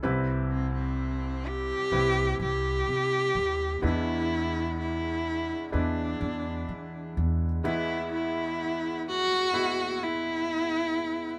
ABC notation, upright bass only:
X:1
M:4/4
L:1/8
Q:1/4=63
K:Emix
V:1 name="Upright bass" clef=bass
=C,,4 C,, C,, =C, ^D,, | E,,4 E,, E,, E, E,, | z8 |]